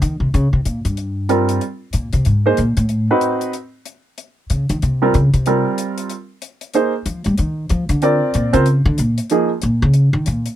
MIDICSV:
0, 0, Header, 1, 4, 480
1, 0, Start_track
1, 0, Tempo, 320342
1, 499, Time_signature, 4, 2, 24, 8
1, 15822, End_track
2, 0, Start_track
2, 0, Title_t, "Grand piano"
2, 0, Program_c, 0, 0
2, 1933, Note_on_c, 0, 55, 48
2, 1940, Note_on_c, 0, 60, 45
2, 1941, Note_on_c, 0, 65, 46
2, 1947, Note_on_c, 0, 70, 53
2, 2415, Note_off_c, 0, 55, 0
2, 2419, Note_off_c, 0, 60, 0
2, 2419, Note_off_c, 0, 65, 0
2, 2422, Note_off_c, 0, 70, 0
2, 3681, Note_on_c, 0, 58, 53
2, 3686, Note_on_c, 0, 63, 51
2, 3692, Note_on_c, 0, 68, 51
2, 3694, Note_on_c, 0, 72, 64
2, 3844, Note_off_c, 0, 58, 0
2, 3847, Note_off_c, 0, 63, 0
2, 3850, Note_off_c, 0, 68, 0
2, 3850, Note_off_c, 0, 72, 0
2, 4654, Note_on_c, 0, 60, 52
2, 4656, Note_on_c, 0, 66, 50
2, 4659, Note_on_c, 0, 71, 61
2, 4660, Note_on_c, 0, 63, 53
2, 5271, Note_off_c, 0, 60, 0
2, 5273, Note_off_c, 0, 66, 0
2, 5274, Note_off_c, 0, 63, 0
2, 5274, Note_off_c, 0, 71, 0
2, 7519, Note_on_c, 0, 55, 51
2, 7523, Note_on_c, 0, 60, 46
2, 7531, Note_on_c, 0, 65, 47
2, 7531, Note_on_c, 0, 70, 58
2, 7683, Note_off_c, 0, 55, 0
2, 7685, Note_off_c, 0, 60, 0
2, 7689, Note_off_c, 0, 65, 0
2, 7689, Note_off_c, 0, 70, 0
2, 8192, Note_on_c, 0, 60, 43
2, 8194, Note_on_c, 0, 55, 44
2, 8202, Note_on_c, 0, 65, 41
2, 8203, Note_on_c, 0, 70, 52
2, 9145, Note_off_c, 0, 60, 0
2, 9146, Note_off_c, 0, 55, 0
2, 9150, Note_off_c, 0, 65, 0
2, 9150, Note_off_c, 0, 70, 0
2, 10106, Note_on_c, 0, 58, 51
2, 10114, Note_on_c, 0, 63, 44
2, 10118, Note_on_c, 0, 68, 45
2, 10120, Note_on_c, 0, 72, 58
2, 10365, Note_off_c, 0, 58, 0
2, 10369, Note_off_c, 0, 63, 0
2, 10371, Note_off_c, 0, 68, 0
2, 10372, Note_off_c, 0, 72, 0
2, 12025, Note_on_c, 0, 60, 51
2, 12034, Note_on_c, 0, 70, 46
2, 12036, Note_on_c, 0, 65, 45
2, 12037, Note_on_c, 0, 74, 56
2, 12736, Note_off_c, 0, 60, 0
2, 12741, Note_off_c, 0, 65, 0
2, 12741, Note_off_c, 0, 70, 0
2, 12742, Note_off_c, 0, 74, 0
2, 12781, Note_on_c, 0, 60, 59
2, 12788, Note_on_c, 0, 70, 55
2, 12790, Note_on_c, 0, 65, 52
2, 12796, Note_on_c, 0, 72, 65
2, 12955, Note_off_c, 0, 60, 0
2, 12959, Note_off_c, 0, 70, 0
2, 12960, Note_off_c, 0, 65, 0
2, 12963, Note_off_c, 0, 72, 0
2, 13948, Note_on_c, 0, 53, 52
2, 13955, Note_on_c, 0, 63, 49
2, 13958, Note_on_c, 0, 58, 51
2, 13959, Note_on_c, 0, 68, 57
2, 14207, Note_off_c, 0, 53, 0
2, 14211, Note_off_c, 0, 63, 0
2, 14212, Note_off_c, 0, 58, 0
2, 14213, Note_off_c, 0, 68, 0
2, 15822, End_track
3, 0, Start_track
3, 0, Title_t, "Upright bass"
3, 0, Program_c, 1, 32
3, 25, Note_on_c, 1, 51, 86
3, 291, Note_off_c, 1, 51, 0
3, 300, Note_on_c, 1, 48, 74
3, 487, Note_off_c, 1, 48, 0
3, 509, Note_on_c, 1, 49, 85
3, 782, Note_off_c, 1, 49, 0
3, 791, Note_on_c, 1, 48, 72
3, 973, Note_off_c, 1, 48, 0
3, 981, Note_on_c, 1, 46, 66
3, 1263, Note_off_c, 1, 46, 0
3, 1271, Note_on_c, 1, 43, 70
3, 2358, Note_off_c, 1, 43, 0
3, 2903, Note_on_c, 1, 46, 67
3, 3184, Note_off_c, 1, 46, 0
3, 3194, Note_on_c, 1, 48, 77
3, 3374, Note_off_c, 1, 48, 0
3, 3387, Note_on_c, 1, 44, 64
3, 3829, Note_off_c, 1, 44, 0
3, 3867, Note_on_c, 1, 46, 80
3, 4140, Note_off_c, 1, 46, 0
3, 4149, Note_on_c, 1, 45, 81
3, 4595, Note_off_c, 1, 45, 0
3, 6744, Note_on_c, 1, 49, 72
3, 7024, Note_off_c, 1, 49, 0
3, 7038, Note_on_c, 1, 51, 86
3, 7215, Note_off_c, 1, 51, 0
3, 7234, Note_on_c, 1, 48, 72
3, 7672, Note_off_c, 1, 48, 0
3, 7711, Note_on_c, 1, 49, 82
3, 7985, Note_off_c, 1, 49, 0
3, 7994, Note_on_c, 1, 48, 79
3, 8438, Note_off_c, 1, 48, 0
3, 10576, Note_on_c, 1, 53, 74
3, 10861, Note_off_c, 1, 53, 0
3, 10876, Note_on_c, 1, 55, 84
3, 11056, Note_off_c, 1, 55, 0
3, 11066, Note_on_c, 1, 51, 79
3, 11509, Note_off_c, 1, 51, 0
3, 11540, Note_on_c, 1, 53, 88
3, 11815, Note_off_c, 1, 53, 0
3, 11824, Note_on_c, 1, 50, 80
3, 12274, Note_off_c, 1, 50, 0
3, 12508, Note_on_c, 1, 46, 78
3, 12783, Note_off_c, 1, 46, 0
3, 12792, Note_on_c, 1, 49, 83
3, 13238, Note_off_c, 1, 49, 0
3, 13268, Note_on_c, 1, 50, 94
3, 13452, Note_off_c, 1, 50, 0
3, 13471, Note_on_c, 1, 46, 76
3, 13749, Note_off_c, 1, 46, 0
3, 14433, Note_on_c, 1, 46, 80
3, 14710, Note_off_c, 1, 46, 0
3, 14718, Note_on_c, 1, 49, 95
3, 15162, Note_off_c, 1, 49, 0
3, 15181, Note_on_c, 1, 51, 93
3, 15368, Note_off_c, 1, 51, 0
3, 15393, Note_on_c, 1, 46, 75
3, 15670, Note_off_c, 1, 46, 0
3, 15822, End_track
4, 0, Start_track
4, 0, Title_t, "Drums"
4, 33, Note_on_c, 9, 42, 40
4, 182, Note_off_c, 9, 42, 0
4, 511, Note_on_c, 9, 42, 35
4, 661, Note_off_c, 9, 42, 0
4, 981, Note_on_c, 9, 42, 43
4, 1131, Note_off_c, 9, 42, 0
4, 1273, Note_on_c, 9, 42, 37
4, 1423, Note_off_c, 9, 42, 0
4, 1456, Note_on_c, 9, 42, 35
4, 1606, Note_off_c, 9, 42, 0
4, 1938, Note_on_c, 9, 42, 43
4, 2088, Note_off_c, 9, 42, 0
4, 2229, Note_on_c, 9, 42, 39
4, 2379, Note_off_c, 9, 42, 0
4, 2416, Note_on_c, 9, 42, 34
4, 2566, Note_off_c, 9, 42, 0
4, 2890, Note_on_c, 9, 42, 42
4, 3040, Note_off_c, 9, 42, 0
4, 3186, Note_on_c, 9, 42, 40
4, 3336, Note_off_c, 9, 42, 0
4, 3371, Note_on_c, 9, 42, 37
4, 3521, Note_off_c, 9, 42, 0
4, 3853, Note_on_c, 9, 42, 42
4, 4003, Note_off_c, 9, 42, 0
4, 4147, Note_on_c, 9, 42, 37
4, 4297, Note_off_c, 9, 42, 0
4, 4328, Note_on_c, 9, 42, 34
4, 4478, Note_off_c, 9, 42, 0
4, 4813, Note_on_c, 9, 42, 42
4, 4963, Note_off_c, 9, 42, 0
4, 5111, Note_on_c, 9, 42, 39
4, 5261, Note_off_c, 9, 42, 0
4, 5295, Note_on_c, 9, 42, 37
4, 5445, Note_off_c, 9, 42, 0
4, 5776, Note_on_c, 9, 42, 44
4, 5926, Note_off_c, 9, 42, 0
4, 6260, Note_on_c, 9, 42, 37
4, 6409, Note_off_c, 9, 42, 0
4, 6741, Note_on_c, 9, 42, 46
4, 6891, Note_off_c, 9, 42, 0
4, 7034, Note_on_c, 9, 42, 39
4, 7184, Note_off_c, 9, 42, 0
4, 7227, Note_on_c, 9, 42, 37
4, 7377, Note_off_c, 9, 42, 0
4, 7704, Note_on_c, 9, 42, 43
4, 7854, Note_off_c, 9, 42, 0
4, 7996, Note_on_c, 9, 42, 37
4, 8146, Note_off_c, 9, 42, 0
4, 8177, Note_on_c, 9, 42, 37
4, 8327, Note_off_c, 9, 42, 0
4, 8660, Note_on_c, 9, 42, 45
4, 8810, Note_off_c, 9, 42, 0
4, 8955, Note_on_c, 9, 42, 42
4, 9105, Note_off_c, 9, 42, 0
4, 9133, Note_on_c, 9, 42, 37
4, 9283, Note_off_c, 9, 42, 0
4, 9617, Note_on_c, 9, 42, 43
4, 9767, Note_off_c, 9, 42, 0
4, 9907, Note_on_c, 9, 42, 39
4, 10057, Note_off_c, 9, 42, 0
4, 10092, Note_on_c, 9, 42, 36
4, 10242, Note_off_c, 9, 42, 0
4, 10573, Note_on_c, 9, 42, 46
4, 10723, Note_off_c, 9, 42, 0
4, 10855, Note_on_c, 9, 42, 40
4, 11005, Note_off_c, 9, 42, 0
4, 11051, Note_on_c, 9, 42, 37
4, 11201, Note_off_c, 9, 42, 0
4, 11530, Note_on_c, 9, 42, 44
4, 11680, Note_off_c, 9, 42, 0
4, 11824, Note_on_c, 9, 42, 40
4, 11974, Note_off_c, 9, 42, 0
4, 12014, Note_on_c, 9, 42, 38
4, 12164, Note_off_c, 9, 42, 0
4, 12494, Note_on_c, 9, 42, 43
4, 12644, Note_off_c, 9, 42, 0
4, 12789, Note_on_c, 9, 42, 40
4, 12939, Note_off_c, 9, 42, 0
4, 12973, Note_on_c, 9, 42, 39
4, 13123, Note_off_c, 9, 42, 0
4, 13453, Note_on_c, 9, 42, 44
4, 13603, Note_off_c, 9, 42, 0
4, 13751, Note_on_c, 9, 42, 42
4, 13901, Note_off_c, 9, 42, 0
4, 13930, Note_on_c, 9, 42, 38
4, 14080, Note_off_c, 9, 42, 0
4, 14408, Note_on_c, 9, 42, 48
4, 14558, Note_off_c, 9, 42, 0
4, 14888, Note_on_c, 9, 42, 39
4, 15038, Note_off_c, 9, 42, 0
4, 15373, Note_on_c, 9, 42, 46
4, 15522, Note_off_c, 9, 42, 0
4, 15667, Note_on_c, 9, 42, 40
4, 15817, Note_off_c, 9, 42, 0
4, 15822, End_track
0, 0, End_of_file